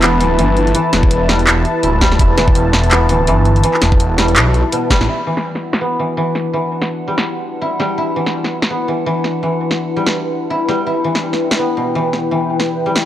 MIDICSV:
0, 0, Header, 1, 6, 480
1, 0, Start_track
1, 0, Key_signature, 1, "minor"
1, 0, Tempo, 361446
1, 996, Time_signature, 4, 2, 24, 8
1, 17332, End_track
2, 0, Start_track
2, 0, Title_t, "Analog synth pad"
2, 0, Program_c, 0, 89
2, 0, Note_on_c, 0, 64, 82
2, 0, Note_on_c, 0, 71, 72
2, 0, Note_on_c, 0, 81, 92
2, 6705, Note_off_c, 0, 71, 0
2, 6707, Note_off_c, 0, 64, 0
2, 6730, Note_off_c, 0, 81, 0
2, 6764, Note_on_c, 0, 78, 87
2, 6765, Note_on_c, 0, 64, 79
2, 6765, Note_on_c, 0, 71, 73
2, 14387, Note_off_c, 0, 78, 0
2, 14437, Note_on_c, 0, 79, 85
2, 17332, Note_off_c, 0, 64, 0
2, 17332, Note_off_c, 0, 71, 0
2, 17332, Note_off_c, 0, 79, 0
2, 17332, End_track
3, 0, Start_track
3, 0, Title_t, "Synth drone"
3, 0, Program_c, 1, 95
3, 6760, Note_on_c, 1, 62, 78
3, 17332, Note_off_c, 1, 62, 0
3, 17332, End_track
4, 0, Start_track
4, 0, Title_t, "Koto"
4, 0, Program_c, 2, 107
4, 0, Note_on_c, 2, 52, 79
4, 0, Note_on_c, 2, 55, 111
4, 0, Note_on_c, 2, 64, 88
4, 34, Note_on_c, 2, 59, 75
4, 253, Note_off_c, 2, 52, 0
4, 269, Note_on_c, 2, 52, 77
4, 495, Note_off_c, 2, 52, 0
4, 511, Note_on_c, 2, 52, 104
4, 980, Note_off_c, 2, 52, 0
4, 996, Note_on_c, 2, 52, 90
4, 1695, Note_off_c, 2, 55, 0
4, 1711, Note_on_c, 2, 55, 82
4, 2078, Note_off_c, 2, 64, 0
4, 2434, Note_on_c, 2, 64, 82
4, 2658, Note_off_c, 2, 55, 0
4, 2674, Note_on_c, 2, 55, 106
4, 2909, Note_off_c, 2, 64, 0
4, 2914, Note_on_c, 2, 64, 87
4, 3137, Note_off_c, 2, 52, 0
4, 3153, Note_on_c, 2, 52, 81
4, 3609, Note_off_c, 2, 59, 0
4, 3872, Note_on_c, 2, 59, 79
4, 4097, Note_off_c, 2, 52, 0
4, 4113, Note_on_c, 2, 52, 79
4, 4338, Note_off_c, 2, 52, 0
4, 4354, Note_on_c, 2, 52, 106
4, 4810, Note_off_c, 2, 52, 0
4, 4826, Note_on_c, 2, 52, 86
4, 5537, Note_off_c, 2, 55, 0
4, 5553, Note_on_c, 2, 55, 81
4, 5920, Note_off_c, 2, 64, 0
4, 6274, Note_on_c, 2, 47, 81
4, 6342, Note_off_c, 2, 52, 0
4, 6498, Note_off_c, 2, 55, 0
4, 6514, Note_on_c, 2, 55, 103
4, 6760, Note_on_c, 2, 64, 79
4, 6822, Note_off_c, 2, 47, 0
4, 6822, Note_off_c, 2, 55, 0
4, 6993, Note_on_c, 2, 52, 78
4, 7446, Note_off_c, 2, 59, 0
4, 7715, Note_on_c, 2, 59, 70
4, 7944, Note_off_c, 2, 52, 0
4, 7960, Note_on_c, 2, 52, 73
4, 8180, Note_off_c, 2, 52, 0
4, 8196, Note_on_c, 2, 52, 101
4, 8662, Note_off_c, 2, 52, 0
4, 8678, Note_on_c, 2, 52, 80
4, 9397, Note_on_c, 2, 55, 74
4, 9765, Note_off_c, 2, 64, 0
4, 10113, Note_on_c, 2, 64, 76
4, 10336, Note_off_c, 2, 55, 0
4, 10352, Note_on_c, 2, 55, 99
4, 10589, Note_off_c, 2, 64, 0
4, 10594, Note_on_c, 2, 64, 79
4, 10822, Note_off_c, 2, 52, 0
4, 10838, Note_on_c, 2, 52, 74
4, 11290, Note_off_c, 2, 59, 0
4, 11556, Note_on_c, 2, 59, 72
4, 11778, Note_off_c, 2, 52, 0
4, 11794, Note_on_c, 2, 52, 70
4, 12020, Note_off_c, 2, 52, 0
4, 12036, Note_on_c, 2, 52, 102
4, 12505, Note_off_c, 2, 52, 0
4, 12521, Note_on_c, 2, 52, 75
4, 13218, Note_off_c, 2, 55, 0
4, 13234, Note_on_c, 2, 55, 76
4, 13600, Note_off_c, 2, 64, 0
4, 13949, Note_on_c, 2, 64, 79
4, 14175, Note_off_c, 2, 55, 0
4, 14190, Note_on_c, 2, 55, 100
4, 14424, Note_off_c, 2, 64, 0
4, 14429, Note_on_c, 2, 64, 81
4, 14650, Note_off_c, 2, 52, 0
4, 14666, Note_on_c, 2, 52, 74
4, 15131, Note_off_c, 2, 59, 0
4, 15392, Note_on_c, 2, 59, 74
4, 15631, Note_on_c, 2, 47, 74
4, 15702, Note_off_c, 2, 52, 0
4, 15874, Note_on_c, 2, 52, 100
4, 16336, Note_off_c, 2, 52, 0
4, 16352, Note_on_c, 2, 52, 78
4, 17060, Note_off_c, 2, 55, 0
4, 17076, Note_on_c, 2, 55, 78
4, 17332, Note_off_c, 2, 47, 0
4, 17332, Note_off_c, 2, 52, 0
4, 17332, Note_off_c, 2, 55, 0
4, 17332, Note_off_c, 2, 59, 0
4, 17332, Note_off_c, 2, 64, 0
4, 17332, End_track
5, 0, Start_track
5, 0, Title_t, "Detuned saw bass"
5, 0, Program_c, 3, 39
5, 0, Note_on_c, 3, 28, 100
5, 278, Note_on_c, 3, 26, 92
5, 297, Note_off_c, 3, 28, 0
5, 509, Note_on_c, 3, 31, 101
5, 529, Note_off_c, 3, 26, 0
5, 979, Note_off_c, 3, 31, 0
5, 1235, Note_on_c, 3, 28, 92
5, 2182, Note_off_c, 3, 28, 0
5, 2434, Note_on_c, 3, 26, 95
5, 2902, Note_off_c, 3, 26, 0
5, 2914, Note_on_c, 3, 28, 102
5, 4113, Note_on_c, 3, 26, 88
5, 4133, Note_off_c, 3, 28, 0
5, 4354, Note_on_c, 3, 31, 103
5, 4373, Note_off_c, 3, 26, 0
5, 4821, Note_off_c, 3, 31, 0
5, 5070, Note_on_c, 3, 28, 88
5, 5788, Note_on_c, 3, 35, 102
5, 5808, Note_off_c, 3, 28, 0
5, 6152, Note_off_c, 3, 35, 0
5, 6647, Note_on_c, 3, 33, 85
5, 6745, Note_off_c, 3, 33, 0
5, 17332, End_track
6, 0, Start_track
6, 0, Title_t, "Drums"
6, 31, Note_on_c, 9, 39, 127
6, 31, Note_on_c, 9, 42, 80
6, 164, Note_off_c, 9, 39, 0
6, 164, Note_off_c, 9, 42, 0
6, 273, Note_on_c, 9, 46, 67
6, 405, Note_off_c, 9, 46, 0
6, 513, Note_on_c, 9, 42, 64
6, 646, Note_off_c, 9, 42, 0
6, 751, Note_on_c, 9, 42, 32
6, 884, Note_off_c, 9, 42, 0
6, 891, Note_on_c, 9, 46, 37
6, 990, Note_on_c, 9, 42, 83
6, 1024, Note_off_c, 9, 46, 0
6, 1123, Note_off_c, 9, 42, 0
6, 1233, Note_on_c, 9, 38, 56
6, 1233, Note_on_c, 9, 46, 76
6, 1366, Note_off_c, 9, 38, 0
6, 1366, Note_off_c, 9, 46, 0
6, 1369, Note_on_c, 9, 36, 107
6, 1472, Note_on_c, 9, 42, 66
6, 1502, Note_off_c, 9, 36, 0
6, 1604, Note_off_c, 9, 42, 0
6, 1713, Note_on_c, 9, 38, 67
6, 1846, Note_off_c, 9, 38, 0
6, 1850, Note_on_c, 9, 46, 40
6, 1953, Note_on_c, 9, 39, 121
6, 1953, Note_on_c, 9, 42, 82
6, 1982, Note_off_c, 9, 46, 0
6, 2086, Note_off_c, 9, 39, 0
6, 2086, Note_off_c, 9, 42, 0
6, 2190, Note_on_c, 9, 42, 35
6, 2323, Note_off_c, 9, 42, 0
6, 2432, Note_on_c, 9, 42, 64
6, 2565, Note_off_c, 9, 42, 0
6, 2672, Note_on_c, 9, 36, 58
6, 2673, Note_on_c, 9, 38, 69
6, 2673, Note_on_c, 9, 42, 31
6, 2805, Note_off_c, 9, 36, 0
6, 2806, Note_off_c, 9, 38, 0
6, 2806, Note_off_c, 9, 42, 0
6, 2809, Note_on_c, 9, 38, 38
6, 2912, Note_on_c, 9, 36, 116
6, 2914, Note_on_c, 9, 42, 80
6, 2942, Note_off_c, 9, 38, 0
6, 3045, Note_off_c, 9, 36, 0
6, 3047, Note_off_c, 9, 42, 0
6, 3154, Note_on_c, 9, 38, 56
6, 3154, Note_on_c, 9, 46, 73
6, 3287, Note_off_c, 9, 38, 0
6, 3287, Note_off_c, 9, 46, 0
6, 3289, Note_on_c, 9, 36, 107
6, 3390, Note_on_c, 9, 42, 67
6, 3421, Note_off_c, 9, 36, 0
6, 3523, Note_off_c, 9, 42, 0
6, 3630, Note_on_c, 9, 38, 66
6, 3762, Note_off_c, 9, 38, 0
6, 3765, Note_on_c, 9, 46, 39
6, 3866, Note_on_c, 9, 39, 122
6, 3866, Note_on_c, 9, 42, 85
6, 3898, Note_off_c, 9, 46, 0
6, 3999, Note_off_c, 9, 39, 0
6, 3999, Note_off_c, 9, 42, 0
6, 4106, Note_on_c, 9, 46, 71
6, 4239, Note_off_c, 9, 46, 0
6, 4347, Note_on_c, 9, 42, 67
6, 4479, Note_off_c, 9, 42, 0
6, 4586, Note_on_c, 9, 42, 33
6, 4719, Note_off_c, 9, 42, 0
6, 4728, Note_on_c, 9, 46, 39
6, 4827, Note_on_c, 9, 42, 83
6, 4860, Note_off_c, 9, 46, 0
6, 4960, Note_off_c, 9, 42, 0
6, 4964, Note_on_c, 9, 39, 38
6, 5068, Note_on_c, 9, 38, 57
6, 5068, Note_on_c, 9, 46, 75
6, 5097, Note_off_c, 9, 39, 0
6, 5200, Note_off_c, 9, 38, 0
6, 5200, Note_off_c, 9, 46, 0
6, 5206, Note_on_c, 9, 36, 107
6, 5311, Note_on_c, 9, 42, 67
6, 5339, Note_off_c, 9, 36, 0
6, 5444, Note_off_c, 9, 42, 0
6, 5552, Note_on_c, 9, 38, 64
6, 5552, Note_on_c, 9, 42, 40
6, 5685, Note_off_c, 9, 38, 0
6, 5685, Note_off_c, 9, 42, 0
6, 5688, Note_on_c, 9, 46, 40
6, 5792, Note_on_c, 9, 39, 117
6, 5792, Note_on_c, 9, 42, 88
6, 5821, Note_off_c, 9, 46, 0
6, 5925, Note_off_c, 9, 39, 0
6, 5925, Note_off_c, 9, 42, 0
6, 6033, Note_on_c, 9, 42, 36
6, 6166, Note_off_c, 9, 42, 0
6, 6274, Note_on_c, 9, 42, 69
6, 6407, Note_off_c, 9, 42, 0
6, 6512, Note_on_c, 9, 36, 63
6, 6515, Note_on_c, 9, 38, 73
6, 6515, Note_on_c, 9, 42, 36
6, 6645, Note_off_c, 9, 36, 0
6, 6648, Note_off_c, 9, 38, 0
6, 6648, Note_off_c, 9, 42, 0
6, 6652, Note_on_c, 9, 38, 39
6, 6756, Note_on_c, 9, 49, 83
6, 6784, Note_off_c, 9, 38, 0
6, 6889, Note_off_c, 9, 49, 0
6, 7132, Note_on_c, 9, 38, 51
6, 7265, Note_off_c, 9, 38, 0
6, 7375, Note_on_c, 9, 38, 34
6, 7507, Note_off_c, 9, 38, 0
6, 7612, Note_on_c, 9, 38, 79
6, 7745, Note_off_c, 9, 38, 0
6, 8435, Note_on_c, 9, 38, 32
6, 8567, Note_off_c, 9, 38, 0
6, 9052, Note_on_c, 9, 38, 50
6, 9185, Note_off_c, 9, 38, 0
6, 9533, Note_on_c, 9, 38, 74
6, 9665, Note_off_c, 9, 38, 0
6, 10356, Note_on_c, 9, 38, 34
6, 10489, Note_off_c, 9, 38, 0
6, 10975, Note_on_c, 9, 38, 47
6, 11108, Note_off_c, 9, 38, 0
6, 11214, Note_on_c, 9, 38, 34
6, 11347, Note_off_c, 9, 38, 0
6, 11452, Note_on_c, 9, 38, 70
6, 11584, Note_off_c, 9, 38, 0
6, 12274, Note_on_c, 9, 38, 31
6, 12407, Note_off_c, 9, 38, 0
6, 12893, Note_on_c, 9, 38, 49
6, 13025, Note_off_c, 9, 38, 0
6, 13367, Note_on_c, 9, 38, 69
6, 13500, Note_off_c, 9, 38, 0
6, 14191, Note_on_c, 9, 38, 31
6, 14323, Note_off_c, 9, 38, 0
6, 14808, Note_on_c, 9, 38, 48
6, 14941, Note_off_c, 9, 38, 0
6, 15048, Note_on_c, 9, 38, 33
6, 15181, Note_off_c, 9, 38, 0
6, 15288, Note_on_c, 9, 38, 73
6, 15421, Note_off_c, 9, 38, 0
6, 16111, Note_on_c, 9, 38, 31
6, 16244, Note_off_c, 9, 38, 0
6, 16727, Note_on_c, 9, 38, 49
6, 16860, Note_off_c, 9, 38, 0
6, 17205, Note_on_c, 9, 38, 71
6, 17332, Note_off_c, 9, 38, 0
6, 17332, End_track
0, 0, End_of_file